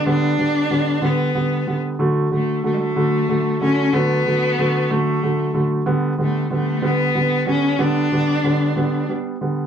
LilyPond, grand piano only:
\new Staff \with { instrumentName = "Grand piano" } { \clef bass \time 6/8 \key g \lydian \tempo 4. = 62 <d g b>8 <d g b>8 <d g b>8 <d g b>8 <d g b>8 <d g b>8 | <d fis a>8 <d fis a>8 <d fis a>8 <d fis a>8 <d fis a>8 <d fis a>8 | <d fis a>8 <d fis a>8 <d fis a>8 <d fis a>8 <d fis a>8 <d fis a>8 | <d g b>8 <d g b>8 <d g b>8 <d g b>8 <d g b>8 <d g b>8 |
<d g b>8 <d g b>8 <d g b>8 <d g b>8 <g b>8 <d g b>8 | }